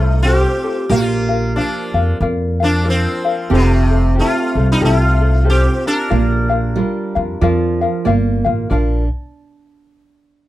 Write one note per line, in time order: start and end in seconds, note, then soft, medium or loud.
0.00 0.44 C2 loud
0.00 0.21 A3 medium
0.00 0.90 A3 medium
0.00 0.10 F4 medium
0.00 0.24 F4 soft
0.00 0.24 A4 medium
0.00 0.23 C5 medium
0.10 0.22 D#4 medium
0.23 0.86 C4 medium
0.23 0.64 F4 medium
0.23 0.91 G4 loud
0.23 0.64 G4 medium
0.23 0.63 C5 medium
0.27 0.62 A4 medium
0.64 0.90 F4 soft
0.64 0.89 A4 medium
0.64 0.90 C5 soft
0.89 1.58 A#1 loud
0.89 3.59 A#3 medium
0.89 1.52 A#3 medium
0.89 1.56 F4 loud
0.89 1.29 F4 medium
0.89 1.29 A#4 medium
0.89 1.30 D5 medium
0.89 1.28 F5 medium
1.29 1.55 F4 soft
1.29 1.55 A#4 medium
1.29 1.55 F5 soft
1.55 2.17 F3 medium
1.55 2.17 D4 medium
1.55 1.95 F4 medium
1.55 1.95 A#4 medium
1.55 1.95 D5 soft
1.55 1.93 F5 medium
1.94 2.11 F2 medium
1.94 2.20 F4 soft
1.94 2.21 A#4 medium
1.94 2.20 F5 medium
2.20 3.05 F2 loud
2.20 2.60 F4 medium
2.20 2.60 A#4 medium
2.20 2.60 D5 medium
2.20 2.59 F5 medium
2.60 2.85 F3 medium
2.60 2.88 D4 medium
2.60 2.84 F4 soft
2.60 2.84 A#4 medium
2.60 2.85 F5 medium
2.84 3.25 F4 medium
2.84 3.25 A#4 medium
2.84 3.24 D5 medium
2.84 3.23 F5 medium
2.88 3.48 F3 medium
2.88 3.54 C4 medium
3.25 3.50 F4 soft
3.25 3.51 A#4 medium
3.25 3.50 F5 medium
3.50 4.19 F1 loud
3.50 6.19 C4 loud
3.50 3.90 F4 medium
3.50 3.90 G4 medium
3.50 3.89 A4 medium
3.50 3.90 C5 medium
3.54 4.13 C3 medium
3.54 4.14 A3 medium
3.90 4.15 F4 soft
3.90 4.16 A4 medium
3.90 4.15 C5 soft
4.15 4.56 F4 medium
4.15 4.55 G4 medium
4.15 4.55 A4 medium
4.15 4.56 C5 medium
4.19 4.66 A3 medium
4.19 4.72 F4 medium
4.55 4.72 C2 medium
4.55 4.80 F4 soft
4.55 4.81 A4 medium
4.55 4.81 C5 medium
4.72 4.82 G3 medium
4.72 4.83 D#4 medium
4.81 5.66 C2 loud
4.81 5.44 A3 medium
4.81 5.21 F4 medium
4.81 5.20 G4 medium
4.81 5.19 A4 medium
4.81 5.20 C5 medium
4.85 5.49 F4 medium
5.21 5.44 F4 soft
5.21 5.45 A4 medium
5.21 5.44 C5 soft
5.44 5.85 F4 medium
5.44 5.85 G4 medium
5.44 5.85 A4 medium
5.44 5.84 C5 medium
5.50 5.85 C4 medium
5.50 5.87 G4 medium
5.85 8.04 D4 medium
5.85 6.09 F4 soft
5.85 8.04 A#4 loud
5.85 6.09 C5 soft
6.09 6.79 A#1 loud
6.09 6.78 A#3 medium
6.09 6.50 F4 medium
6.09 6.50 A#4 medium
6.09 6.50 D5 medium
6.09 6.48 F5 loud
6.50 6.76 F4 medium
6.50 6.77 A#4 medium
6.50 6.76 F5 medium
6.76 7.41 G3 medium
6.76 7.16 F4 medium
6.76 7.15 A#4 medium
6.76 7.16 D5 medium
6.76 7.14 F5 medium
7.15 7.33 F2 medium
7.15 7.41 F4 medium
7.15 7.42 A#4 medium
7.15 7.41 F5 medium
7.41 7.84 F2 medium
7.41 8.09 F3 medium
7.41 7.81 F4 medium
7.41 7.81 A#4 medium
7.41 7.81 D5 medium
7.41 7.80 F5 medium
7.81 8.05 F4 soft
7.81 8.05 A#4 medium
7.81 8.06 F5 medium
8.05 8.42 G1 medium
8.05 8.67 A#3 medium
8.05 8.45 F4 medium
8.05 8.45 A#4 medium
8.05 8.45 D5 medium
8.05 8.43 F5 medium
8.45 8.69 A1 medium
8.45 8.69 F4 medium
8.45 8.70 A#4 medium
8.45 8.71 F5 medium
8.70 9.08 A#1 medium
8.70 9.08 D4 medium
8.70 9.03 F4 medium
8.70 9.03 A#4 medium
8.70 9.02 D5 medium
8.70 9.04 F5 medium